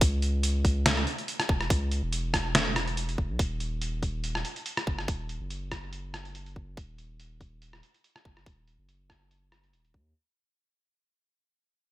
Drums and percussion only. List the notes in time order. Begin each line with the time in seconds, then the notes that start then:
0.01 kick, closed hi-hat
0.22 closed hi-hat
0.43 closed hi-hat
0.65 kick, closed hi-hat
0.86 snare, closed hi-hat
0.97 cross-stick
1.07 closed hi-hat
1.18 closed hi-hat
1.28 closed hi-hat
1.40 cross-stick, closed hi-hat
1.49 kick
1.61 cross-stick
1.70 kick, closed hi-hat
1.91 closed hi-hat
2.13 closed hi-hat
2.34 kick, cross-stick, closed hi-hat
2.55 snare, closed hi-hat
2.76 cross-stick, closed hi-hat
2.88 closed hi-hat
2.97 closed hi-hat
3.09 closed hi-hat
3.18 kick
3.39 kick, closed hi-hat
3.60 closed hi-hat
3.82 closed hi-hat
4.03 kick, closed hi-hat
4.24 closed hi-hat
4.35 cross-stick
4.45 closed hi-hat
4.56 closed hi-hat
4.66 closed hi-hat
4.77 cross-stick, closed hi-hat
4.87 kick
4.98 cross-stick
5.08 kick, closed hi-hat
5.29 closed hi-hat
5.50 closed hi-hat
5.72 kick, cross-stick, closed hi-hat
5.93 closed hi-hat
6.14 cross-stick, closed hi-hat
6.25 closed hi-hat
6.35 closed hi-hat
6.46 closed hi-hat
6.56 kick
6.77 kick, closed hi-hat
6.98 closed hi-hat
7.20 closed hi-hat
7.41 kick, closed hi-hat
7.62 closed hi-hat
7.73 cross-stick
7.83 closed hi-hat
7.94 closed hi-hat
8.04 closed hi-hat
8.16 cross-stick, closed hi-hat
8.25 kick
8.37 cross-stick
8.46 kick, closed hi-hat
8.68 closed hi-hat
8.89 closed hi-hat
9.10 kick, cross-stick, closed hi-hat
9.31 closed hi-hat
9.52 cross-stick, closed hi-hat
9.64 closed hi-hat
9.73 closed hi-hat
9.85 closed hi-hat
9.94 kick